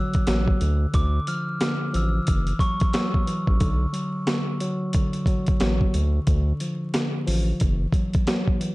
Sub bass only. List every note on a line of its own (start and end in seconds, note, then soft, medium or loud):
0.28 0.53 A1 loud
0.61 0.86 D2 loud
0.94 1.20 D2 loud
1.94 2.20 A1 medium
2.28 2.53 F#1 loud
3.48 3.58 A1 loud
3.61 3.86 B1 loud
5.61 5.86 A1 loud
5.94 6.20 D2 loud
6.27 6.53 D2 loud
7.28 7.53 A1 medium
7.61 7.87 F#1 loud